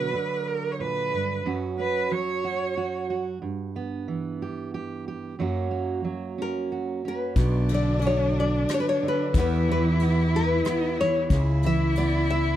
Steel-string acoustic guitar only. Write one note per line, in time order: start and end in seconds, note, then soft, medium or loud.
0.00 0.13 B2 medium
0.00 0.12 D3 medium
0.00 1.45 F#3 soft
0.14 1.45 D3 soft
0.79 1.12 A#2 medium
1.13 1.45 G2 soft
1.45 3.38 F#2 medium
1.45 2.10 F#3 soft
1.45 1.78 C#4 soft
1.45 2.43 F#4 medium
1.80 3.38 C#4 soft
2.11 3.38 F#3 medium
2.44 2.76 F#4 medium
2.77 3.09 F#4 medium
3.10 3.38 F#4 medium
3.42 5.34 G2 medium
3.76 5.35 B3 soft
4.08 5.34 E3 soft
4.42 4.73 G4 medium
4.74 5.06 G4 medium
5.08 5.35 G4 medium
5.39 7.33 F#2 medium
5.39 6.03 F#3 soft
5.39 5.70 A#3 soft
5.39 6.37 C#4 soft
5.39 6.71 F#4 medium
5.71 7.33 A#3 soft
6.04 7.33 F#3 soft
6.38 7.04 C#4 soft
6.72 7.33 F#4 medium
7.05 7.33 C#4 soft
7.37 7.70 B2 medium
7.71 9.02 D3 medium
8.06 9.36 F#3 medium
9.03 9.35 D3 medium
9.37 11.28 E2 medium
9.37 9.68 E3 medium
9.37 10.02 B3 medium
9.37 10.33 G4 medium
9.69 10.99 E3 medium
10.02 10.68 B3 medium
10.35 11.28 G4 medium
10.68 11.35 B3 medium
11.00 11.28 E3 medium
11.32 11.64 C#3 medium
11.65 12.56 E3 medium
11.98 12.56 B3 medium